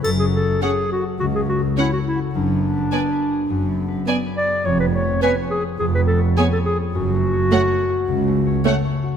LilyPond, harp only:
\new Staff \with { instrumentName = "Harp" } { \time 4/4 \key fis \minor \tempo 4 = 104 \tuplet 3/2 { <fis, cis'>8 cis'8 a'8 cis''8 a'8 fis'8 cis8 cis'8 a'8 cis''8 a'8 fis'8 } | \tuplet 3/2 { fis,8 b8 b'8 gis'8 b'8 gis'8 fis,8 b8 b'8 gis'8 b'8 gis'8 } | \tuplet 3/2 { eis,8 b8 cis''8 b'8 cis''8 gis'8 eis,8 b8 cis''8 b'8 cis''8 gis'8 } | \tuplet 3/2 { fis,8 a8 cis''8 a'8 cis''8 fis'8 cis8 a8 cis''8 a'8 cis''8 fis'8 } | }